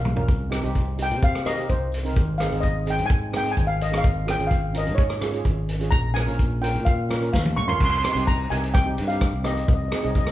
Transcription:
Already playing: B1
0.05 mid tom, shaker
0.15 C#4 F4 A#4, floor tom, shaker
0.28 C2, kick, closed hi-hat, shaker
0.50 C4 D#4 G4, cross-stick, closed hi-hat, shaker
0.62 C2 C4 D#4 G4, closed hi-hat, shaker
0.75 kick, closed hi-hat, shaker
0.97 C4 D#4 G4, closed hi-hat, shaker
1.02 G5
1.11 C3, closed hi-hat
1.22 F5, kick, closed hi-hat, shaker
1.35 cross-stick
1.44 C4 D#4 A#4 D#5, cross-stick, closed hi-hat, shaker
1.57 C4 D#4 G4, closed hi-hat
1.69 C2 C5, kick, closed hi-hat, shaker
1.92 closed hi-hat, shaker
2.03 C4 D#4 A#4, closed hi-hat, shaker
2.15 G#1, kick, closed hi-hat, shaker
2.38 C4 D#4 G#4 F5, cross-stick, closed hi-hat, shaker
2.50 G#1 C4 D#4 G#4, closed hi-hat
2.60 D#5, kick, closed hi-hat, shaker
2.85 C4 D#4 G#4, closed hi-hat, shaker
2.90 G5
2.98 G#2, closed hi-hat
3.06 G#5
3.10 kick, closed hi-hat, shaker
3.32 C4 D#4 G#4, cross-stick, closed hi-hat, shaker
3.37 G5
3.43 C4 D#4 G#4, closed hi-hat
3.51 G#5
3.57 G#1, kick, closed hi-hat, shaker
3.67 F5
3.81 D#5, closed hi-hat, shaker
3.91 C4 D#4 G#4, cross-stick, closed hi-hat
3.98 F5
4.04 G#1, kick, closed hi-hat, shaker
4.26 C#4 F4 G#4, cross-stick, closed hi-hat, shaker
4.30 G5
4.39 G#1 C#4 F4 G#4, closed hi-hat, shaker
4.47 F5
4.51 kick, closed hi-hat, shaker
4.73 C#4 F4 A#4, closed hi-hat, shaker
4.78 D#5
4.87 G#2, closed hi-hat
4.95 C#5, kick, closed hi-hat, shaker
5.10 cross-stick
5.21 C#4 F4 G#4, cross-stick, closed hi-hat, shaker
5.32 C#4 F4 G#4, closed hi-hat
5.45 G#1, kick, closed hi-hat, shaker
5.68 closed hi-hat, shaker
5.79 C#4 F4 G#4, closed hi-hat
5.91 A#1 A#5, kick, closed hi-hat, shaker
6.13 C#4 F4 A#4 G#5, cross-stick, closed hi-hat, shaker
6.26 A#1 C#4 F4 A#4, closed hi-hat, shaker
6.39 kick, closed hi-hat, shaker
6.61 C#4 F4 A#4 G5, closed hi-hat, shaker
6.75 A#2, closed hi-hat
6.85 F5, kick, closed hi-hat, shaker
7.09 C#4 F4 A#4, cross-stick, closed hi-hat, shaker
7.20 C#4 F4 A#4, closed hi-hat, shaker
7.32 D#2 F5, kick, snare, shaker
7.45 high tom
7.56 C#2 C#6, mid tom, shaker
7.67 C#4 F4 A#4 C6, floor tom
7.75 C6
7.80 C2, kick, crash, shaker
7.84 C6
7.90 C6
7.98 C6
8.02 C4 D#4 G4 C6, cross-stick, closed hi-hat, shaker
8.12 C2 C4 D#4 C6
8.16 G4, closed hi-hat
8.27 A#5, kick, closed hi-hat, shaker
8.50 C2 C4 D#4 G4 G#5, closed hi-hat, shaker
8.63 closed hi-hat
8.73 G5, kick, cross-stick, closed hi-hat, shaker
8.84 C4 D#4 G4
8.97 G2, closed hi-hat, shaker
9.07 C4 D#4 G4 F5, closed hi-hat, shaker
9.21 kick, cross-stick, closed hi-hat, shaker
9.33 C2
9.43 C4 D#4 G4 D#5, cross-stick, closed hi-hat, shaker
9.54 D#5, closed hi-hat
9.60 D#5
9.66 C2 D#5, kick, closed hi-hat, shaker
9.74 D#5
9.82 D#5
9.88 C4 D#4 G#4 D#5, cross-stick, closed hi-hat, shaker
9.96 D#5
10.02 C2 C4 D#4 G#4 D#5, closed hi-hat
10.11 D#5, shaker
10.15 D#5, kick, closed hi-hat
10.27 cross-stick

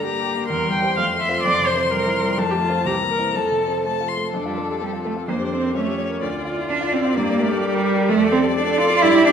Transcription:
Already playing: G2 D3 D4
0.03 A#3 G4 A#5
0.19 G4
0.35 A#3
0.50 E2 G3 A#4 C6
0.66 G3
0.74 G5
0.82 C4 G4
0.97 F2 A3 F5
1.13 A3
1.20 E5
1.29 C4 F4
1.44 F2 E3 D5
1.60 C3
1.67 C5
1.75 C4
1.91 G3 A#4
2.06 E4
2.22 G3
2.38 F2 F3 A5
2.50 A3 G4
2.62 F4
2.70 C4 F4
2.85 C2 E3 G4 A#5
3.02 A#3
3.11 A#4
3.18 C4 E4
3.34 F2 F3 A4 A5
3.51 C3
3.68 C4
3.84 A3 A5
4.00 F4
4.08 C6
4.17 A3
4.32 F2 D4 A4
4.46 G3 F4
4.58 F3 A4
4.70 G4
4.81 G3 C4 A4
4.93 F4
5.05 A3 A4
5.16 F4
5.28 F2 A#3 D4 C5
5.40 G4
5.52 C4 C5
5.64 A#4
5.75 F2 A3 C#4 C#5
5.87 G4
5.98 C#5
6.10 A#4
6.21 D2 F4 D5
6.34 D5
6.45 F4
6.57 E4
6.69 D4 D5
6.81 F4
6.93 C4 D5
7.05 F4
7.16 G2 A#3 G4
7.28 D5
7.39 A3 A#4
7.51 A4
7.62 G3 D5
7.74 A#4
7.86 D5
7.98 A#4
8.09 F2 A3 A4 D5
8.21 D5
8.31 C4 A4
8.44 G4
8.55 D4 A4 D5
8.67 A4
8.78 F4 D5
8.90 A4
9.02 G2 E4 G4
9.14 D5
9.26 D4 G4

